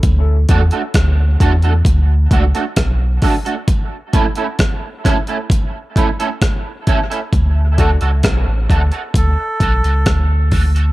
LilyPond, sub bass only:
\new Staff \with { instrumentName = "Sub bass" } { \clef bass \time 4/4 \key d \major \tempo 4 = 66 d,8 e,16 r16 d,8 e,8 d,8 cis,16 r16 b,,8 r8 | r1 | d,8. cis,16 b,,16 a,,16 d,16 r16 d,16 r16 b,,16 cis,16 d,4 | }